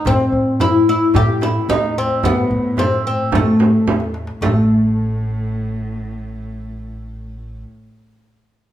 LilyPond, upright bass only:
\new Staff \with { instrumentName = "Upright bass" } { \clef bass \time 4/4 \tempo 4 = 110 a,8 a,4. a,4 e,4 | a,8 a,4. a,4 e,4 | a,,1~ | a,,1 | }